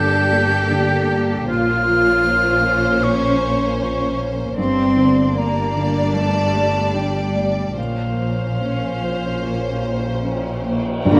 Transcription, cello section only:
0.00 1.48 G4 medium
1.48 3.00 F4 medium
3.03 3.80 C#4 medium
3.81 4.19 C#4 medium
4.59 5.33 C4 medium
5.37 6.15 A#3 medium
6.16 6.95 A3 medium
6.95 7.77 G3 medium
7.78 10.62 F3 soft
11.06 11.20 D3 medium

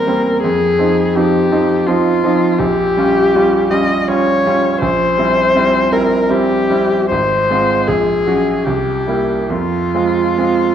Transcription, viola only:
0.00 0.42 A#4 medium
0.43 1.17 G#4 medium
1.16 1.88 G4 medium
1.87 2.60 F4 medium
2.59 3.72 G4 medium
3.71 4.09 D#5 medium
4.08 4.80 C#5 medium
4.81 5.94 C5 medium
5.92 6.32 A#4 medium
6.30 7.09 G4 medium
7.10 7.89 C5 medium
7.87 8.67 G#4 medium
8.65 9.51 G4 medium
9.50 10.75 F4 medium

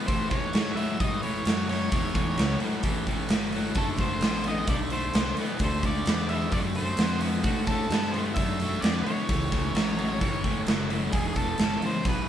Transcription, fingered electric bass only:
0.09 0.30 A2 medium
0.31 muted fingered electric bass stroke soft
0.54 0.76 G#2 loud
0.77 muted fingered electric bass stroke soft
1.00 1.21 G2 medium
1.24 muted fingered electric bass stroke soft
1.46 1.91 F#2 medium
1.92 2.37 E2 medium
2.38 2.59 C#2 loud
2.61 muted fingered electric bass stroke soft
2.84 3.28 A1 medium
3.30 3.74 G1 medium
3.76 4.20 F#1 medium
4.22 4.67 A1 medium
4.68 5.13 B1 medium
5.14 5.36 C2 medium
5.37 muted fingered electric bass stroke soft
5.60 6.05 D2 medium
6.07 6.51 E2 loud
6.52 6.97 F#2 medium
6.98 7.43 F2 medium
7.44 7.89 A2 medium
7.90 8.35 G2 loud
8.37 8.81 F#2 medium
8.83 9.04 F2 medium
9.06 muted fingered electric bass stroke soft
9.30 9.74 C#2 medium
9.75 10.20 A1 loud
10.21 10.66 G1 medium
10.67 11.12 F#1 medium
11.13 11.58 E1 medium
11.59 11.80 G1 loud
11.82 muted fingered electric bass stroke soft
12.06 12.29 B1 medium

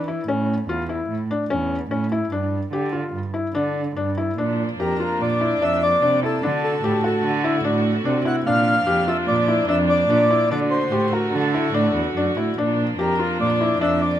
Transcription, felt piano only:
0.08 0.20 E4 medium
0.28 0.53 C#4 medium
0.69 0.81 F4 medium
0.89 1.14 E4 medium
1.31 1.43 D4 medium
1.50 1.75 C#4 medium
1.91 2.03 C#4 medium
2.12 2.24 E4 medium
2.32 2.57 D4 medium
2.73 2.85 G4 medium
2.93 3.18 F4 medium
3.34 3.46 E4 medium
3.55 3.80 D4 medium
3.96 4.09 D4 medium
4.18 4.30 E4 medium
4.38 4.63 D4 medium
4.80 4.92 G4 medium
5.00 5.25 F4 medium
5.41 5.53 E4 medium
5.62 5.87 D4 medium
6.02 6.15 D4 medium
6.23 6.35 E4 medium
6.43 6.68 D4 medium
6.84 6.96 G4 medium
7.04 7.29 F#4 medium
7.44 7.57 E4 medium
7.64 7.89 D4 medium
8.05 8.18 D4 medium
8.25 8.38 E4 medium
8.47 8.71 D4 medium
8.87 8.99 G4 medium
9.08 9.32 F4 medium
9.48 9.61 E4 medium
9.68 9.93 D4 medium
10.10 10.22 D4 medium
10.31 10.43 E4 medium
10.51 10.76 D4 medium
10.92 11.04 G4 medium
11.13 11.38 F#4 medium
11.54 11.67 E4 medium
11.74 11.99 D4 medium
12.17 12.29 D4 medium
12.37 12.49 E4 medium
12.58 12.83 D4 medium
12.99 13.11 G4 medium
13.19 13.44 F4 medium
13.61 13.73 E4 medium
13.81 14.06 D4 medium

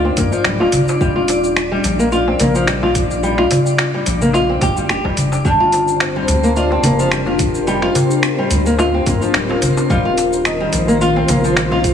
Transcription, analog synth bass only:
0.00 0.11 D2 medium
0.17 0.28 G2 medium
0.45 0.65 D1 medium
0.73 0.84 G1 loud
1.01 1.78 D#1 loud
1.84 2.34 A#1 medium
2.40 3.45 A#1 loud
4.07 4.56 A#1 medium
4.77 4.91 G1 loud
4.89 5.10 D#1 medium
5.17 5.38 F1 medium
5.45 6.23 G1 medium
6.28 6.78 D2 medium
6.84 7.89 F1 medium
8.50 9.00 D2 medium
9.07 9.17 G2 medium
9.34 9.54 D1 medium
9.62 9.72 G1 loud
9.90 10.67 D#1 medium
10.73 11.23 A#1 medium
11.28 11.94 A#1 loud

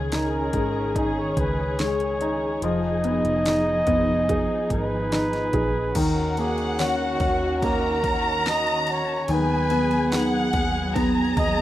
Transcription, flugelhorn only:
0.16 1.00 A#4 medium
0.99 1.20 G#4 medium
1.19 1.32 C#5 medium
1.32 1.41 C#5 medium
1.39 1.81 B4 medium
1.80 2.63 C#5 medium
2.64 4.68 D#5 loud
4.72 5.99 B4 medium
5.98 6.41 A#4 medium
6.39 6.82 G#4 medium
6.81 7.67 F#4 medium
7.65 8.51 A#4 medium
8.49 8.82 D#5 medium
8.82 8.92 D#5 medium
8.91 9.31 C#5 loud
9.33 10.52 B4 medium
11.39 11.62 D#5 medium

